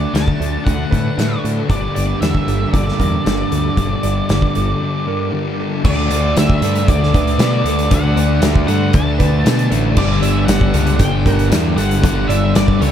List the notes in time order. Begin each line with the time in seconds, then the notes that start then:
Already playing: D3 F#3 A3 D4 F#4 D5
0.14 D2 D3 A3 D4 A5, snare, closed hi-hat
0.28 kick
0.40 D2 A4, closed hi-hat
0.64 D2 D3 A3 D4 F#5, kick, closed hi-hat
0.91 A2 A3 D4 B4, kick, closed hi-hat
1.18 A2 D3 A3 D4, snare, closed hi-hat
1.44 A2 A4, closed hi-hat
1.68 G1 G2 D3 G3 A#3 D4 G4 D5, kick, closed hi-hat
1.95 G1 D5, closed hi-hat
2.21 E2 G2 D3 G3 E5, snare, closed hi-hat
2.35 kick
2.48 G1 A4, closed hi-hat
2.72 G1 G2 D3 G3 D5, kick, closed hi-hat
2.88 snare
2.97 E2 D3 G3 A#4, kick, closed hi-hat
3.25 G1 G2 D3 G3, snare, closed hi-hat
3.52 D2 A4, closed hi-hat
3.77 G1 G2 D3 G3, kick, closed hi-hat
4.03 G1 D5, closed hi-hat
4.29 G1 G2 D3 G3, snare, closed hi-hat
4.42 kick
4.55 G1 A4, closed hi-hat
4.80 G2 D3 G3
5.07 D3 G3 A#4
5.31 G2 D3 G3
5.60 A4
5.84 D2 D3 A3 D4 D5, kick, crash
6.10 D2 D5, closed hi-hat
6.37 D2 D3 A3 D4 E5, snare, closed hi-hat
6.50 kick
6.62 G2 D3 A3 D4 A4, closed hi-hat
6.75 closed hi-hat
6.88 D2 D5, kick, closed hi-hat
7.03 snare
7.13 D2 A3 D4 B4, kick, closed hi-hat
7.27 closed hi-hat
7.38 B2 D3 A3 D4, snare, closed hi-hat
7.64 D2 A3 D4 A4, closed hi-hat
7.79 closed hi-hat
7.90 D2 D3 A3 D4 F#5, kick, closed hi-hat
8.16 D2 D5, closed hi-hat
8.42 D2 D3 A3 D4, snare, closed hi-hat
8.56 kick
8.67 G2 D3 A3 D4 A4 F#5, closed hi-hat
8.93 D2 A5, kick, closed hi-hat
9.19 D2 A3 D4 B4, kick, closed hi-hat
9.44 B2 D3 A3 D4, snare, closed hi-hat
9.59 closed hi-hat
9.70 A1 A3 D4 A4, closed hi-hat
9.95 G1 G2 D3 G3 D5, kick, crash
10.22 G1 D5 E5, closed hi-hat
10.45 G1 G2 D3 G3 F#5, closed hi-hat
10.49 snare
10.61 kick
10.74 C#2 G2 D3 G3 A4, closed hi-hat
10.87 closed hi-hat
10.97 G1 G5, kick, closed hi-hat
11.25 G1 D3 G3 A#4, kick, closed hi-hat
11.34 F#5
11.39 closed hi-hat
11.51 E2 G2 D3 G3, snare, closed hi-hat
11.76 G1 D3 G3 A4 F#5, closed hi-hat
11.91 closed hi-hat
12.02 G1 G2 D3 G3, kick, closed hi-hat
12.28 G1 D5 E5, closed hi-hat
12.53 G1 G2 D3 G3 D5, snare, closed hi-hat
12.68 kick
12.80 C#2 G2 D3 G3 A4 C#5, closed hi-hat